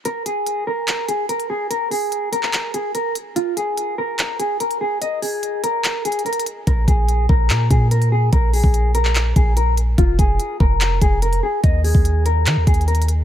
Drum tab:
HH |x-----x-----x-----------x-----x-----x--x--------|x-----o-----x-----x-----x-----x-----x-----x-----|x-----x-----x-----------x-----x-----x--x--------|x-----o-----x-----x-----x-----x-x-x-x-x-x-x-----|
CP |------------------------x-----------------------|---------------------x--x-----------------------|------------------------x-----------------------|------------------------x-----------------------|
BD |------------------------------------------------|------------------------------------------------|------------------------------------------------|------------------------------------------------|

HH |x-----x-----x-----------x-----x-----x--x--------|x-----o-----x-----x-----x-----x-----x-----x-----|x-----x-----x-----------x-----x-----x--x--------|x-----o-----x-----x-----x-----x-x-x-x-x-x-x-----|
CP |------------------------x-----------------------|---------------------x--x-----------------------|------------------------x-----------------------|------------------------x-----------------------|
BD |o-----o-----------o-----------o-----------------|o--------o--------------------o-----------------|o-----o-----------o-----------o-----------------|o--------o--------------------o-----------------|